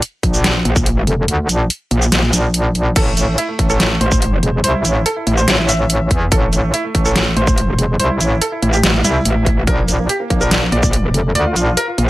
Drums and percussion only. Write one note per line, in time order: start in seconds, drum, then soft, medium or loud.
0.02 closed hi-hat medium
0.23 kick medium
0.23 closed hi-hat medium
0.34 shaker medium
0.44 snare loud
0.44 closed hi-hat medium
0.65 closed hi-hat medium
0.76 kick loud
0.76 shaker medium
0.86 closed hi-hat medium
1.07 closed hi-hat medium
1.28 closed hi-hat medium
1.49 closed hi-hat medium
1.49 shaker medium
1.70 closed hi-hat medium
1.91 closed hi-hat medium
2.02 shaker medium
2.12 snare loud
2.12 closed hi-hat medium
2.23 snare soft
2.33 closed hi-hat medium
2.33 shaker medium
2.54 closed hi-hat medium
2.75 closed hi-hat medium
2.96 kick loud
2.96 closed hi-hat medium
2.96 crash medium
3.17 closed hi-hat medium
3.17 shaker medium
3.38 closed hi-hat medium
3.59 kick medium
3.59 closed hi-hat medium
3.70 shaker medium
3.80 snare loud
3.80 closed hi-hat medium
4.01 closed hi-hat medium
4.12 kick loud
4.12 shaker medium
4.22 closed hi-hat medium
4.43 closed hi-hat medium
4.64 closed hi-hat medium
4.85 closed hi-hat medium
4.85 shaker medium
5.06 closed hi-hat medium
5.27 closed hi-hat medium
5.38 shaker medium
5.48 snare loud
5.48 closed hi-hat medium
5.58 snare soft
5.69 closed hi-hat medium
5.69 shaker medium
5.90 closed hi-hat medium
6.11 kick medium
6.11 closed hi-hat medium
6.32 kick loud
6.32 closed hi-hat medium
6.53 closed hi-hat medium
6.53 shaker medium
6.74 closed hi-hat medium
6.95 kick medium
6.95 closed hi-hat medium
7.05 shaker soft
7.16 snare loud
7.16 closed hi-hat medium
7.37 closed hi-hat medium
7.47 kick loud
7.47 shaker medium
7.58 closed hi-hat medium
7.79 closed hi-hat medium
8.00 closed hi-hat medium
8.21 closed hi-hat medium
8.21 shaker medium
8.42 closed hi-hat medium
8.63 closed hi-hat medium
8.73 shaker medium
8.83 snare loud
8.83 closed hi-hat medium
8.94 snare soft
9.04 closed hi-hat medium
9.04 shaker medium
9.25 closed hi-hat medium
9.46 kick medium
9.46 closed hi-hat medium
9.67 kick loud
9.67 closed hi-hat medium
9.88 closed hi-hat medium
9.88 shaker medium
10.09 closed hi-hat medium
10.30 kick medium
10.30 closed hi-hat medium
10.41 shaker medium
10.51 snare loud
10.51 closed hi-hat medium
10.72 closed hi-hat soft
10.83 kick loud
10.83 shaker medium
10.93 closed hi-hat medium
11.14 closed hi-hat medium
11.35 closed hi-hat medium
11.56 closed hi-hat medium
11.56 shaker medium
11.77 closed hi-hat medium
11.98 closed hi-hat medium